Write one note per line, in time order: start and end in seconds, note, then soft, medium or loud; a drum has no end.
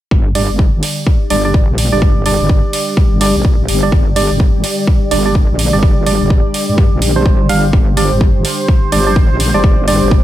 0.11 0.47 G1 medium
0.11 10.24 D3 medium
0.11 10.24 G3 medium
0.11 10.24 G4 medium
0.11 7.72 D5 medium
0.11 kick loud
0.35 0.50 G3 medium
0.35 0.50 D4 medium
0.35 0.50 D5 medium
0.35 open hi-hat medium
0.50 0.81 G1 medium
0.59 kick loud
0.83 open hi-hat medium
1.07 kick loud
1.30 1.66 G1 medium
1.30 1.43 G3 medium
1.30 1.43 D4 medium
1.30 1.43 D5 medium
1.30 open hi-hat medium
1.45 1.55 G3 medium
1.45 1.55 D4 medium
1.45 1.55 D5 medium
1.54 kick loud
1.69 1.90 A#1 medium
1.78 open hi-hat loud
1.92 2.38 G1 medium
1.92 2.23 G3 medium
1.92 2.23 D4 medium
1.92 2.23 D5 medium
2.02 kick medium
2.26 3.19 G3 medium
2.26 3.19 D4 medium
2.26 3.19 D5 medium
2.26 open hi-hat medium
2.40 2.62 G1 medium
2.49 kick loud
2.73 open hi-hat loud
2.97 kick loud
3.12 3.33 G1 medium
3.21 3.36 G3 medium
3.21 3.36 D4 medium
3.21 3.36 D5 medium
3.21 open hi-hat loud
3.35 3.67 A#1 medium
3.45 kick loud
3.69 3.91 G1 medium
3.69 open hi-hat loud
3.83 3.93 G3 medium
3.83 3.93 D4 medium
3.83 3.93 D5 medium
3.92 4.28 G1 medium
3.92 kick loud
4.16 4.31 G3 medium
4.16 4.31 D4 medium
4.16 4.31 D5 medium
4.16 open hi-hat loud
4.31 4.62 G1 medium
4.40 kick loud
4.64 open hi-hat medium
4.87 kick loud
5.11 5.47 G1 medium
5.11 5.23 G3 medium
5.11 5.23 D4 medium
5.11 5.23 D5 medium
5.11 open hi-hat loud
5.26 5.36 G3 medium
5.26 5.36 D4 medium
5.26 5.36 D5 medium
5.35 kick loud
5.50 5.71 A#1 medium
5.59 open hi-hat loud
5.73 6.19 G1 medium
5.73 6.04 G3 medium
5.73 6.04 D4 medium
5.73 6.04 D5 medium
5.83 kick loud
6.06 6.99 G3 medium
6.06 6.99 D4 medium
6.06 6.99 D5 medium
6.06 open hi-hat loud
6.21 6.42 G1 medium
6.30 kick loud
6.54 open hi-hat loud
6.69 6.90 G2 medium
6.78 kick loud
6.92 7.24 A#1 medium
7.02 open hi-hat loud
7.16 7.47 G3 medium
7.16 7.47 D4 medium
7.16 7.47 C5 medium
7.26 7.48 G1 medium
7.26 kick loud
7.49 7.72 G1 medium
7.49 7.64 G3 medium
7.49 7.64 D4 medium
7.49 7.64 F5 medium
7.49 open hi-hat medium
7.73 8.09 G1 medium
7.73 10.24 C5 medium
7.73 kick loud
7.97 8.12 G3 medium
7.97 8.12 D4 medium
7.97 8.12 D5 medium
7.97 open hi-hat medium
8.11 8.43 G1 medium
8.21 kick loud
8.45 open hi-hat loud
8.68 kick loud
8.92 9.28 G1 medium
8.92 9.04 G3 medium
8.92 9.04 D4 medium
8.92 9.04 D5 loud
8.92 open hi-hat loud
9.07 9.17 G3 medium
9.07 9.17 D4 medium
9.07 9.17 D5 medium
9.16 kick loud
9.31 9.52 A#1 medium
9.40 open hi-hat loud
9.54 10.00 G1 loud
9.54 9.85 G3 medium
9.54 9.85 D4 medium
9.54 9.85 D5 medium
9.64 kick loud
9.88 10.24 G3 medium
9.88 10.24 D4 medium
9.88 10.24 D5 medium
9.88 open hi-hat medium
10.02 10.23 G1 medium
10.11 kick loud